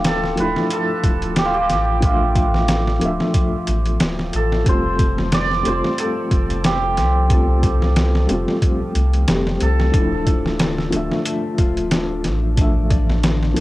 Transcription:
0.00 0.35 D1 loud
0.00 0.33 F3 medium
0.00 13.60 F3 medium
0.00 0.34 A3 medium
0.00 1.39 A3 medium
0.00 0.35 D4 medium
0.00 1.85 D4 medium
0.00 0.92 F4 medium
0.00 1.45 F4 medium
0.00 1.38 G4 medium
0.00 0.36 E5 medium
0.04 0.73 A4 loud
0.04 snare loud
0.04 closed hi-hat medium
0.24 snare soft
0.35 0.54 D1 medium
0.35 1.98 F3 medium
0.35 1.99 A3 medium
0.35 2.00 D4 medium
0.35 closed hi-hat medium
0.40 2.01 E4 medium
0.40 3.13 B4 medium
0.56 snare soft
0.71 3.66 A4 loud
0.71 closed hi-hat medium
1.04 1.71 D1 medium
1.04 kick medium
1.04 closed hi-hat medium
1.22 closed hi-hat soft
1.36 1.54 G4 medium
1.36 snare loud
1.36 closed hi-hat medium
1.45 2.04 F4 medium
1.54 4.68 G4 medium
1.69 2.99 A1 medium
1.69 snare soft
1.69 closed hi-hat medium
2.00 2.97 F3 medium
2.00 2.98 A3 medium
2.00 kick loud
2.00 closed hi-hat medium
2.04 2.99 D4 medium
2.04 5.41 F4 medium
2.04 3.00 E5 medium
2.35 kick medium
2.35 closed hi-hat medium
2.54 snare soft
2.68 snare loud
2.68 closed hi-hat medium
2.87 snare soft
2.99 3.18 D1 medium
2.99 4.62 F3 medium
2.99 4.63 A3 medium
2.99 4.64 D4 medium
2.99 closed hi-hat medium
3.05 4.65 E5 medium
3.20 snare soft
3.34 kick loud
3.34 closed hi-hat medium
3.67 3.97 A1 medium
3.67 closed hi-hat medium
3.86 closed hi-hat soft
4.00 4.30 D1 medium
4.00 snare loud
4.00 closed hi-hat medium
4.19 snare soft
4.33 4.63 A1 medium
4.33 6.00 A4 medium
4.33 closed hi-hat medium
4.52 snare soft
4.64 5.62 F1 medium
4.64 5.61 G3 medium
4.64 5.62 A3 medium
4.64 5.63 C4 medium
4.64 kick loud
4.64 closed hi-hat medium
4.69 5.64 F4 medium
4.69 5.67 C5 medium
4.99 kick loud
4.99 closed hi-hat medium
5.18 snare soft
5.32 7.81 D5 loud
5.32 snare loud
5.32 closed hi-hat medium
5.51 snare soft
5.63 5.81 F1 medium
5.63 7.25 G3 medium
5.63 7.27 A3 medium
5.63 closed hi-hat medium
5.67 7.27 C4 medium
5.67 7.28 F4 medium
5.67 8.31 C5 medium
5.84 snare soft
5.98 7.32 A4 medium
5.98 closed hi-hat medium
6.31 6.99 F1 medium
6.31 kick medium
6.31 closed hi-hat medium
6.50 closed hi-hat soft
6.64 9.80 G4 medium
6.64 snare loud
6.64 closed hi-hat medium
6.97 8.26 C2 medium
6.97 snare soft
6.97 closed hi-hat medium
7.28 8.24 G3 medium
7.28 8.25 A3 medium
7.28 kick loud
7.28 closed hi-hat medium
7.32 8.26 C4 medium
7.32 8.27 F4 medium
7.32 9.62 A4 medium
7.63 kick medium
7.63 closed hi-hat medium
7.82 snare soft
7.96 snare loud
7.96 closed hi-hat medium
8.15 snare medium
8.27 8.45 F1 medium
8.27 9.24 G3 medium
8.27 9.25 A3 medium
8.27 closed hi-hat medium
8.31 9.26 C4 medium
8.31 9.27 F4 medium
8.48 snare soft
8.62 kick loud
8.62 closed hi-hat medium
8.95 9.24 C2 medium
8.95 closed hi-hat medium
9.13 closed hi-hat soft
9.27 9.57 F1 loud
9.27 9.90 G3 medium
9.27 9.90 A3 medium
9.27 9.91 C4 medium
9.27 9.91 G4 medium
9.27 snare loud
9.27 closed hi-hat medium
9.47 snare soft
9.61 9.90 C2 medium
9.61 12.55 A4 loud
9.61 closed hi-hat medium
9.80 snare soft
9.91 10.90 D1 medium
9.91 10.88 F3 medium
9.91 10.89 A3 medium
9.91 10.92 D4 medium
9.91 10.90 D4 medium
9.91 kick loud
9.91 closed hi-hat medium
9.98 10.91 E4 medium
10.26 12.11 D5 medium
10.26 kick medium
10.26 closed hi-hat medium
10.46 snare soft
10.59 13.22 D3 medium
10.59 snare loud
10.59 closed hi-hat medium
10.78 snare soft
10.90 11.09 D1 medium
10.90 12.53 F3 medium
10.90 12.54 A3 medium
10.90 11.91 D4 medium
10.90 12.55 D4 medium
10.90 closed hi-hat medium
10.96 12.56 E5 medium
11.12 snare soft
11.25 13.60 A3 medium
11.25 closed hi-hat medium
11.58 12.26 D1 medium
11.58 13.60 F4 medium
11.58 kick medium
11.58 closed hi-hat medium
11.77 closed hi-hat soft
11.91 12.24 D4 loud
11.91 snare loud
11.91 closed hi-hat medium
12.24 13.54 A1 medium
12.24 12.57 D4 medium
12.24 snare soft
12.24 closed hi-hat medium
12.55 13.52 F3 medium
12.55 13.53 A3 medium
12.55 13.56 D4 loud
12.55 13.54 D4 medium
12.55 kick loud
12.55 closed hi-hat medium
12.61 13.55 E5 medium
12.90 13.60 D5 medium
12.90 kick medium
12.90 closed hi-hat medium
13.10 snare soft
13.23 13.60 D3 medium
13.23 snare loud
13.23 closed hi-hat medium
13.43 snare soft
13.54 13.60 D1 medium
13.54 13.60 F3 medium
13.54 13.60 A3 medium
13.54 13.60 D4 medium
13.54 closed hi-hat medium

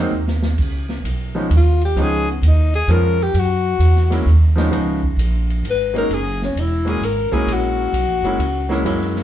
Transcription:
0.00 0.10 F#3 medium
0.00 0.11 G#3 medium
0.00 0.11 A#3 medium
0.00 0.11 C4 medium
0.00 0.11 D#4 medium
0.11 0.56 D#2 medium
0.28 snare medium
0.43 snare medium
0.58 1.02 C#2 medium
0.58 kick medium
0.58 crash medium
0.89 snare soft
1.04 1.48 B1 medium
1.04 hi-hat pedal medium
1.04 ride medium
1.35 1.48 F3 medium
1.35 1.48 G#3 medium
1.35 1.49 B3 medium
1.35 1.49 C#4 medium
1.35 1.49 D#4 medium
1.50 1.95 D#2 medium
1.50 hi-hat pedal soft
1.50 ride medium
1.57 1.82 F4 medium
1.81 2.04 G4 medium
1.81 ride soft
1.95 2.40 C#2 medium
1.95 2.24 F3 medium
1.95 2.24 G#3 medium
1.95 2.24 B3 medium
1.95 2.25 C#4 medium
1.95 2.25 D#4 medium
1.95 ride medium
2.03 2.30 G#4 medium
2.31 2.47 B3 soft
2.42 2.86 D#2 medium
2.42 hi-hat pedal soft
2.42 ride medium
2.47 2.75 D#4 medium
2.74 2.93 G#4 medium
2.74 ride soft
2.88 3.32 F2 medium
2.88 3.16 F3 medium
2.88 3.16 G#3 medium
2.88 3.17 B3 medium
2.88 3.17 C#4 medium
2.88 3.17 F4 medium
2.88 3.25 A#4 medium
2.88 hi-hat pedal soft
2.88 ride medium
3.23 3.41 G4 medium
3.34 3.78 F#2 medium
3.34 ride medium
3.39 4.29 F#4 medium
3.79 4.24 E2 medium
3.79 hi-hat pedal medium
3.79 ride medium
3.96 snare soft
4.10 4.24 F#3 medium
4.10 4.24 G#3 medium
4.10 4.24 A#3 medium
4.10 4.25 C#4 medium
4.10 4.25 E4 medium
4.10 snare soft
4.10 ride medium
4.26 4.70 D#2 medium
4.26 hi-hat pedal medium
4.56 4.69 F3 medium
4.56 4.70 G#3 medium
4.56 4.70 B3 medium
4.56 4.70 C#4 medium
4.56 4.71 D#4 medium
4.56 snare medium
4.56 ride soft
4.70 5.16 C#2 medium
4.70 4.99 F3 medium
4.70 4.99 G#3 medium
4.70 4.99 B3 medium
4.70 5.00 C#4 medium
4.70 5.00 D#4 medium
4.70 ride medium
5.03 kick soft
5.16 5.62 A#1 medium
5.16 hi-hat pedal soft
5.16 ride medium
5.50 ride soft
5.63 6.08 G#1 medium
5.63 hi-hat pedal soft
5.63 ride medium
5.70 5.96 B4 medium
5.94 6.08 F#3 medium
5.94 6.08 G#3 medium
5.94 6.08 A#3 medium
5.94 6.08 C#4 medium
5.94 6.09 D#4 medium
5.94 ride soft
5.98 6.15 A#4 medium
6.09 6.54 F#1 medium
6.09 ride medium
6.14 6.43 G#4 medium
6.42 6.61 C#4 medium
6.42 snare soft
6.55 7.00 E1 medium
6.55 hi-hat pedal soft
6.55 ride medium
6.60 6.91 E4 medium
6.85 6.99 F#3 medium
6.85 7.00 G#3 medium
6.85 7.00 A#3 medium
6.85 7.00 C#4 medium
6.85 7.01 E4 medium
6.85 ride soft
6.89 7.06 G#4 medium
7.01 7.30 G#1 medium
7.01 7.35 A#4 medium
7.01 hi-hat pedal medium
7.01 ride medium
7.32 7.90 F#3 medium
7.32 7.90 G#3 medium
7.32 7.90 A#3 medium
7.32 7.91 C#4 medium
7.32 7.91 E4 medium
7.32 7.55 G#4 medium
7.32 muted upright bass stroke soft
7.32 kick medium
7.32 ride soft
7.46 7.91 A#1 medium
7.46 ride medium
7.53 8.88 F#4 medium
7.92 8.08 B1 medium
7.92 hi-hat pedal medium
7.92 ride medium
8.08 8.21 A#1 medium
8.22 8.37 F#1 medium
8.22 8.38 F#3 medium
8.22 8.38 G#3 medium
8.22 8.38 A#3 medium
8.22 8.39 C#4 medium
8.22 ride soft
8.26 8.39 E4 medium
8.38 8.83 C#2 loud
8.38 ride medium
8.69 8.83 F#3 medium
8.69 8.84 G#3 medium
8.69 8.84 A#3 medium
8.69 8.84 C#4 medium
8.69 8.85 E4 medium
8.69 snare soft
8.84 9.23 F#2 medium
8.84 9.23 F#3 medium
8.84 9.23 G#3 medium
8.84 9.23 A#3 medium
8.84 9.23 C#4 medium
8.84 9.23 E4 medium
8.84 ride medium
9.01 snare soft
9.16 snare soft

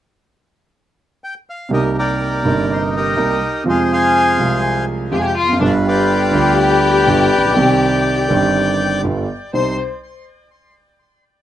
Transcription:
1.24 1.34 G5 medium
1.50 1.71 F5 medium
1.69 2.41 C2 medium
1.69 2.40 C3 medium
1.69 2.40 G3 medium
1.69 2.41 A#3 soft
1.69 2.42 D#4 medium
1.69 1.97 G4 soft
1.73 1.96 A#4 soft
1.73 1.84 D#5 medium
1.98 2.70 G4 soft
1.98 2.90 A#4 soft
1.98 2.73 D5 medium
2.43 3.14 G1 medium
2.43 3.14 G2 medium
2.43 3.13 C3 medium
2.43 3.14 G3 soft
2.43 3.15 A#3 soft
2.47 3.15 D#4 medium
2.71 3.63 D#4 soft
2.71 2.95 G4 soft
2.71 2.83 C5 medium
2.96 3.64 G4 soft
2.96 3.63 A#4 soft
2.96 3.64 D#5 medium
3.16 3.37 C2 medium
3.16 3.37 C3 medium
3.16 3.38 G3 soft
3.16 3.38 A#3 medium
3.16 3.38 D#4 medium
3.64 4.36 F2 medium
3.64 4.34 C3 medium
3.64 4.35 F3 medium
3.64 4.36 G#3 medium
3.68 4.36 F4 medium
3.68 4.61 G#4 medium
3.68 3.92 C5 medium
3.68 3.80 F5 medium
3.92 4.85 C5 medium
3.92 4.85 F5 medium
3.92 4.85 G#5 medium
4.39 5.08 C2 medium
4.39 5.08 C3 medium
4.39 5.08 F3 soft
4.39 5.09 G#3 medium
4.39 5.09 F4 medium
5.11 5.32 F2 medium
5.11 5.32 C3 medium
5.11 5.32 F3 medium
5.11 5.32 G#3 soft
5.11 5.32 F4 medium
5.11 5.18 G4 medium
5.11 5.18 G5 medium
5.17 5.23 G#4 medium
5.21 5.35 G4 medium
5.21 5.25 G#5 medium
5.27 5.37 G5 medium
5.37 5.59 F4 medium
5.37 5.61 F5 medium
5.43 5.48 E2 soft
5.48 5.54 F2 soft
5.53 5.60 F#2 medium
5.59 6.30 G1 medium
5.59 6.30 G2 medium
5.59 6.29 D3 medium
5.59 6.30 G3 medium
5.59 6.31 B3 medium
5.59 5.71 D4 medium
5.63 6.31 F4 medium
5.63 6.56 F4 soft
5.63 5.87 B4 medium
5.63 5.75 D5 medium
5.85 8.99 G4 medium
5.85 7.53 B4 medium
5.85 9.01 D5 medium
5.89 9.02 G5 medium
6.31 7.03 D2 medium
6.31 7.03 D3 medium
6.31 7.02 G3 medium
6.31 7.03 B3 medium
6.36 7.04 F4 medium
7.07 7.27 G1 medium
7.07 7.28 G2 medium
7.07 7.27 D3 medium
7.07 7.27 G3 medium
7.07 7.27 B3 medium
7.07 7.27 F4 medium
7.38 7.43 A1 soft
7.44 7.50 A#1 soft
7.50 7.56 B1 medium
7.55 8.26 C2 medium
7.55 8.26 C3 medium
7.55 8.25 D#3 medium
7.55 8.26 G3 medium
7.55 8.26 C4 medium
7.59 8.27 G4 medium
8.29 9.00 G1 medium
8.29 9.00 G2 medium
8.29 8.99 D#3 medium
8.29 9.00 G3 medium
8.29 9.00 C4 medium
8.33 9.01 G4 medium
9.04 9.24 G1 medium
9.04 9.25 G2 medium
9.04 9.24 D3 soft
9.04 9.25 G3 soft
9.04 9.24 B3 soft
9.04 9.25 F4 medium
9.53 9.74 C2 soft
9.53 9.74 G3 soft
9.53 9.74 C4 soft
9.53 9.74 D#4 medium
9.53 9.76 C5 medium
9.53 9.77 C6 medium

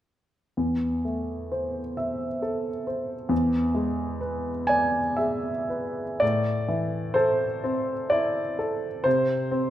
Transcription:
0.57 3.27 E2 soft
1.05 1.80 A3 soft
1.52 2.25 C5 soft
1.97 2.69 E5 soft
2.42 3.13 A4 soft
2.87 3.31 C5 soft
3.29 6.16 E2 medium
3.75 4.50 G#3 soft
4.21 4.99 B4 soft
4.67 5.49 D5 soft
4.67 5.18 G#5 medium
5.17 6.02 G#4 soft
5.17 6.20 E5 medium
5.70 6.21 B4 soft
6.20 9.02 A2 soft
6.20 7.16 D5 medium
6.68 7.45 E3 soft
7.14 7.93 A4 soft
7.14 8.11 C5 medium
7.64 8.40 C4 soft
8.10 8.87 E4 soft
8.10 9.05 D5 medium
8.59 9.06 A4 soft
9.04 9.70 C3 soft
9.04 9.70 C5 medium
9.52 9.70 C4 soft

